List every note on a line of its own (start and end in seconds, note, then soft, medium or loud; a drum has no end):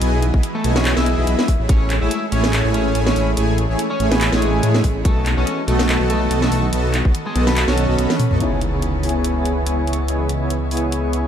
0.00 0.32 B1 loud
0.00 1.45 E3 medium
0.00 5.01 G#3 medium
0.00 0.18 B3 loud
0.00 0.18 E4 medium
0.00 1.44 F#4 medium
0.00 0.18 G#4 medium
0.00 0.18 D#5 medium
0.00 0.18 G#5 loud
0.00 closed hi-hat medium
0.22 closed hi-hat medium
0.34 0.41 B1 loud
0.34 0.43 B3 medium
0.34 0.43 E4 medium
0.34 0.43 G#4 medium
0.34 0.43 D#5 medium
0.34 0.43 G#5 medium
0.34 kick medium
0.43 closed hi-hat medium
0.55 0.71 A3 medium
0.55 0.71 A4 medium
0.64 0.95 B1 loud
0.64 0.94 B3 loud
0.64 0.94 E4 medium
0.64 0.94 G#4 medium
0.64 0.94 D#5 medium
0.64 0.94 G#5 loud
0.64 closed hi-hat medium
0.76 0.92 C#4 medium
0.76 0.92 C#5 medium
0.76 snare medium
0.85 clap loud
0.85 closed hi-hat medium
0.96 1.16 B1 loud
0.96 1.15 B3 medium
0.96 1.62 E4 medium
0.96 1.15 E4 medium
0.96 1.15 G#4 medium
0.96 1.15 D#5 medium
0.96 1.62 E5 medium
0.96 1.15 G#5 loud
0.96 snare medium
1.06 closed hi-hat medium
1.18 1.25 B1 loud
1.18 1.25 B3 medium
1.18 1.25 E4 medium
1.18 1.25 G#4 medium
1.18 1.25 D#5 medium
1.18 1.25 B5 loud
1.27 1.36 B1 loud
1.27 1.38 B3 medium
1.27 1.38 E4 medium
1.27 1.38 G#4 medium
1.27 1.38 D#5 medium
1.27 1.38 B5 medium
1.27 closed hi-hat medium
1.39 snare medium
1.48 8.37 E3 medium
1.48 5.01 C#4 medium
1.48 kick medium
1.48 open hi-hat medium
1.59 1.67 A1 medium
1.59 1.67 A3 medium
1.59 1.67 E4 medium
1.59 1.67 G#4 medium
1.59 1.67 C#5 medium
1.59 1.67 B5 medium
1.69 1.99 A1 loud
1.69 1.86 A3 loud
1.69 1.94 C#4 medium
1.69 1.86 E4 medium
1.69 1.86 G#4 medium
1.69 1.86 C#5 medium
1.69 1.94 C#5 medium
1.69 1.86 G#5 loud
1.69 kick loud
1.69 closed hi-hat medium
1.90 clap medium
1.90 closed hi-hat medium
2.01 2.09 A1 loud
2.01 2.11 A3 medium
2.01 2.25 E4 medium
2.01 2.11 E4 medium
2.01 2.11 G#4 medium
2.01 2.11 C#5 medium
2.01 2.25 E5 medium
2.01 2.11 G#5 medium
2.11 closed hi-hat medium
2.32 2.62 A1 loud
2.32 2.62 A3 loud
2.32 2.66 C#4 medium
2.32 2.62 E4 medium
2.32 2.62 G#4 medium
2.32 2.62 C#5 loud
2.32 2.66 C#5 medium
2.32 2.62 G#5 loud
2.32 closed hi-hat medium
2.44 snare medium
2.53 clap loud
2.53 closed hi-hat medium
2.65 2.93 A1 loud
2.65 2.93 A3 medium
2.65 2.93 E4 medium
2.65 2.93 G#4 medium
2.65 2.93 C#5 medium
2.65 2.93 G#5 loud
2.74 2.99 C#4 medium
2.74 2.99 C#5 medium
2.74 closed hi-hat medium
2.95 3.14 A1 loud
2.95 3.14 A3 medium
2.95 3.14 E4 medium
2.95 3.14 G#4 medium
2.95 3.14 C#5 medium
2.95 3.14 G#5 loud
2.95 closed hi-hat medium
3.06 3.30 C#4 medium
3.06 3.30 C#5 medium
3.06 snare medium
3.16 3.35 A1 loud
3.16 3.27 A3 medium
3.16 3.27 E4 medium
3.16 3.27 G#4 medium
3.16 3.27 C#5 medium
3.16 3.27 B5 medium
3.16 open hi-hat medium
3.37 3.67 A1 loud
3.37 3.53 A3 loud
3.37 3.53 E4 medium
3.37 3.53 G#4 medium
3.37 3.53 C#5 medium
3.37 3.53 G#5 loud
3.37 closed hi-hat medium
3.58 closed hi-hat medium
3.69 3.77 A1 loud
3.69 3.79 A3 medium
3.69 3.79 E4 medium
3.69 3.79 G#4 medium
3.69 3.79 C#5 medium
3.69 3.79 G#5 medium
3.79 closed hi-hat medium
3.90 4.06 C#4 medium
3.90 4.06 C#5 medium
4.00 4.30 A1 loud
4.00 4.30 A3 loud
4.00 4.30 E4 medium
4.00 4.30 G#4 medium
4.00 4.30 C#5 loud
4.00 4.30 G#5 loud
4.00 closed hi-hat medium
4.11 4.27 B3 medium
4.11 4.27 B4 medium
4.11 snare medium
4.21 clap loud
4.21 closed hi-hat medium
4.32 4.61 A1 loud
4.32 4.97 G#3 medium
4.32 4.61 A3 medium
4.32 4.61 E4 medium
4.32 4.61 G#4 medium
4.32 4.97 G#4 medium
4.32 4.61 C#5 medium
4.32 4.61 G#5 loud
4.32 snare medium
4.42 closed hi-hat medium
4.63 4.82 A2 loud
4.63 4.82 A3 medium
4.63 4.82 E4 medium
4.63 4.82 G#4 medium
4.63 4.82 C#5 medium
4.63 4.82 G#5 loud
4.63 closed hi-hat medium
4.74 snare medium
4.84 5.03 A1 loud
4.84 4.95 A3 medium
4.84 4.95 E4 medium
4.84 4.95 G#4 medium
4.84 4.95 C#5 medium
4.84 4.95 B5 medium
4.84 kick medium
4.84 open hi-hat loud
5.05 5.35 B1 loud
5.05 8.37 D#3 medium
5.05 5.30 A3 medium
5.05 5.21 B3 loud
5.05 8.37 B3 medium
5.05 5.21 F#4 medium
5.05 5.21 A4 medium
5.05 5.30 A4 medium
5.05 5.21 D#5 loud
5.05 5.21 A5 loud
5.05 kick loud
5.05 closed hi-hat medium
5.26 clap medium
5.26 closed hi-hat medium
5.37 5.44 B1 loud
5.37 5.46 B3 medium
5.37 5.61 C#4 medium
5.37 5.46 F#4 medium
5.37 5.46 A4 medium
5.37 5.61 C#5 medium
5.37 5.46 D#5 medium
5.37 5.46 A5 medium
5.47 closed hi-hat medium
5.68 5.98 B1 loud
5.68 6.01 A3 medium
5.68 5.98 B3 loud
5.68 5.98 F#4 loud
5.68 5.98 A4 medium
5.68 6.01 A4 medium
5.68 5.98 D#5 loud
5.68 5.98 A5 loud
5.68 closed hi-hat medium
5.79 snare medium
5.89 clap loud
5.89 closed hi-hat medium
6.00 6.29 B1 medium
6.00 6.29 B3 medium
6.00 6.29 F#4 medium
6.00 6.29 A4 medium
6.00 6.29 D#5 medium
6.00 6.28 A5 loud
6.10 6.35 A3 medium
6.10 6.35 A4 medium
6.10 closed hi-hat medium
6.31 6.50 B1 loud
6.31 6.50 B3 loud
6.31 6.50 F#4 medium
6.31 6.50 A4 medium
6.31 6.50 D#5 medium
6.31 6.50 A5 loud
6.31 closed hi-hat medium
6.42 6.66 A3 medium
6.42 6.66 A4 medium
6.42 snare medium
6.52 6.71 B1 loud
6.52 6.63 B3 medium
6.52 6.63 F#4 medium
6.52 6.63 A4 medium
6.52 6.63 D#5 medium
6.52 6.63 C#6 medium
6.52 open hi-hat loud
6.73 7.03 B1 loud
6.73 6.89 B3 loud
6.73 6.89 F#4 medium
6.73 6.89 A4 medium
6.73 6.89 D#5 medium
6.73 6.89 A5 loud
6.73 closed hi-hat medium
6.94 clap medium
6.94 closed hi-hat medium
7.05 7.12 B1 loud
7.05 7.14 B3 medium
7.05 7.14 F#4 medium
7.05 7.14 A4 medium
7.05 7.14 D#5 medium
7.05 7.14 A5 medium
7.05 kick medium
7.15 closed hi-hat medium
7.26 7.42 G#3 medium
7.26 7.42 G#4 medium
7.36 7.66 B1 loud
7.36 7.65 B3 loud
7.36 7.65 F#4 loud
7.36 7.65 A4 medium
7.36 7.65 D#5 medium
7.36 7.65 A5 loud
7.36 closed hi-hat medium
7.47 7.63 B3 medium
7.47 7.63 B4 medium
7.47 snare medium
7.57 clap loud
7.57 closed hi-hat medium
7.68 7.87 B1 loud
7.68 7.87 B3 medium
7.68 8.33 C#4 medium
7.68 7.87 F#4 medium
7.68 7.87 A4 medium
7.68 8.33 C#5 medium
7.68 7.87 D#5 medium
7.68 7.87 A5 loud
7.68 snare medium
7.78 closed hi-hat medium
7.89 7.97 B1 loud
7.89 7.96 B3 medium
7.89 7.96 F#4 medium
7.89 7.96 A4 medium
7.89 7.96 D#5 medium
7.89 7.96 B5 loud
7.99 8.07 B1 loud
7.99 8.09 B3 medium
7.99 8.09 F#4 medium
7.99 8.09 A4 medium
7.99 8.09 D#5 medium
7.99 8.09 B5 medium
7.99 closed hi-hat medium
8.10 snare medium
8.10 high tom medium
8.20 open hi-hat loud
8.20 mid tom medium
8.31 8.39 B1 loud
8.31 8.38 B3 medium
8.31 8.38 F#4 medium
8.31 8.38 A4 medium
8.31 8.38 D#5 medium
8.31 8.38 C#6 medium
8.31 mid tom medium
8.38 11.28 C#2 medium
8.38 11.28 C#3 medium
8.38 11.28 E3 medium
8.38 11.28 B3 medium
8.38 8.57 B3 medium
8.38 11.28 B3 medium
8.38 11.28 D#4 medium
8.38 8.57 E4 medium
8.38 11.28 E4 medium
8.38 8.57 G#4 medium
8.38 11.28 G#4 medium
8.38 8.57 C#5 medium
8.38 11.28 D#5 medium
8.38 8.57 G#5 loud
8.38 closed hi-hat medium
8.38 impact medium
8.43 11.28 C#5 medium
8.61 closed hi-hat medium
8.73 8.82 B3 medium
8.73 8.82 E4 medium
8.73 8.82 G#4 medium
8.73 8.82 C#5 medium
8.73 8.82 G#5 medium
8.82 closed hi-hat medium
9.03 9.33 B3 medium
9.03 9.33 E4 medium
9.03 9.33 G#4 medium
9.03 9.33 C#5 medium
9.03 9.33 G#5 loud
9.03 open hi-hat medium
9.09 closed hi-hat medium
9.24 closed hi-hat medium
9.36 9.64 B3 medium
9.36 9.64 E4 medium
9.36 9.64 G#4 medium
9.36 9.64 C#5 medium
9.36 9.64 G#5 loud
9.45 closed hi-hat medium
9.66 9.85 B3 medium
9.66 9.85 E4 medium
9.66 9.85 G#4 medium
9.66 9.85 C#5 medium
9.66 9.85 G#5 loud
9.66 closed hi-hat medium
9.87 9.98 B3 medium
9.87 9.98 E4 medium
9.87 9.98 G#4 medium
9.87 9.98 C#5 medium
9.87 9.98 C#6 medium
9.87 closed hi-hat soft
9.93 closed hi-hat medium
10.08 10.25 B3 loud
10.08 10.25 E4 medium
10.08 10.25 G#4 medium
10.08 10.25 C#5 medium
10.08 10.25 G#5 loud
10.08 closed hi-hat medium
10.29 closed hi-hat medium
10.41 10.50 B3 medium
10.41 10.50 E4 medium
10.41 10.50 G#4 medium
10.41 10.50 C#5 medium
10.41 10.50 G#5 medium
10.50 closed hi-hat medium
10.71 11.01 B3 loud
10.71 11.01 E4 medium
10.71 11.01 G#4 medium
10.71 11.01 C#5 medium
10.71 11.01 G#5 loud
10.71 open hi-hat medium
10.77 closed hi-hat medium
10.92 closed hi-hat medium
11.03 11.28 B3 medium
11.03 11.28 E4 medium
11.03 11.28 G#4 medium
11.03 11.28 C#5 medium
11.03 11.28 G#5 medium
11.13 closed hi-hat medium